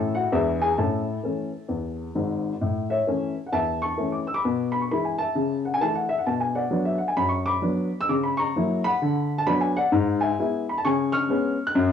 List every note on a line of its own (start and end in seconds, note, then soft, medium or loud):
0.00 0.25 A2 medium
0.00 0.11 E3 soft
0.00 0.12 A3 soft
0.00 0.13 C#4 soft
0.00 0.14 A4 medium
0.00 0.11 A5 medium
0.15 0.31 F#4 medium
0.15 0.29 F#5 medium
0.32 0.71 E2 medium
0.32 0.57 E3 soft
0.32 0.59 G#3 soft
0.32 0.58 D4 soft
0.32 0.59 E4 medium
0.32 0.57 E5 medium
0.62 0.78 G#4 medium
0.62 0.76 G#5 medium
0.78 1.17 A2 medium
0.78 1.04 C#4 soft
0.78 2.11 A4 medium
0.78 1.94 A5 medium
1.24 1.49 E3 soft
1.24 1.50 A3 soft
1.24 1.50 C#4 soft
1.69 2.08 E2 soft
2.15 2.52 G#1 medium
2.15 2.52 G#2 medium
2.61 3.00 A2 medium
2.90 3.41 C#5 soft
2.90 3.36 E5 medium
3.07 3.32 E3 soft
3.07 3.33 A3 soft
3.07 3.33 C#4 medium
3.46 3.53 F#5 medium
3.52 3.91 E2 medium
3.52 3.79 E5 medium
3.52 3.77 A5 medium
3.82 4.11 A5 soft
3.82 4.08 C#6 medium
3.98 4.23 E3 soft
3.98 4.24 A3 soft
3.98 4.24 C#4 soft
4.12 4.26 D6 medium
4.27 4.35 E6 medium
4.34 4.70 B5 medium
4.34 4.66 D6 medium
4.45 4.83 B2 medium
4.72 4.80 B5 medium
4.81 4.89 C#6 medium
4.91 5.16 E3 soft
4.91 5.16 G#3 soft
4.91 5.17 E4 soft
4.91 5.05 B5 medium
5.05 5.18 G#5 medium
5.18 5.62 E5 medium
5.18 5.57 A5 medium
5.35 5.74 C#3 medium
5.65 5.73 F#5 medium
5.74 5.81 G#5 medium
5.81 6.06 E3 soft
5.81 6.07 A3 soft
5.81 6.07 E4 medium
5.81 5.95 A5 medium
5.95 6.09 F#5 medium
6.09 6.18 E5 medium
6.18 6.26 F#5 medium
6.26 6.65 B2 medium
6.26 6.41 A5 medium
6.40 6.55 G#5 medium
6.55 6.84 D5 medium
6.55 6.82 F#5 medium
6.71 6.96 F#3 medium
6.71 6.96 B3 soft
6.71 6.96 D4 medium
6.85 7.00 E5 medium
6.98 7.08 F#5 medium
7.08 7.17 G#5 medium
7.17 7.56 F#2 medium
7.17 7.32 B5 medium
7.29 7.45 C#6 medium
7.46 7.97 B5 medium
7.46 7.92 D6 medium
7.62 7.88 F#3 medium
7.62 7.88 B3 medium
7.62 7.88 D4 soft
8.01 8.09 E6 loud
8.09 8.48 C#3 medium
8.09 8.24 D6 medium
8.24 8.38 B5 medium
8.37 8.81 A#5 medium
8.37 8.77 C#6 medium
8.56 8.81 F#3 medium
8.56 8.81 A#3 soft
8.56 8.81 E4 medium
8.84 9.36 F#5 medium
8.84 9.30 B5 loud
9.02 9.40 D3 medium
9.38 9.47 A5 medium
9.47 9.72 F#3 medium
9.47 9.72 B3 medium
9.47 9.72 D4 medium
9.47 9.61 B5 loud
9.61 9.75 G#5 medium
9.76 9.93 D5 medium
9.76 9.90 F#5 medium
9.92 10.31 G#2 medium
10.21 10.64 E5 medium
10.21 10.60 G#5 medium
10.39 10.64 G#3 soft
10.39 10.64 B3 soft
10.39 10.64 E4 medium
10.69 10.77 B5 medium
10.78 10.85 A5 medium
10.84 11.23 C#3 medium
10.84 11.12 G#5 medium
10.84 11.09 C#6 medium
11.12 11.63 C#6 medium
11.12 11.59 F6 loud
11.28 11.54 G#3 medium
11.28 11.55 B3 medium
11.28 11.55 C#4 medium
11.67 11.75 F#6 medium
11.75 11.92 F#2 medium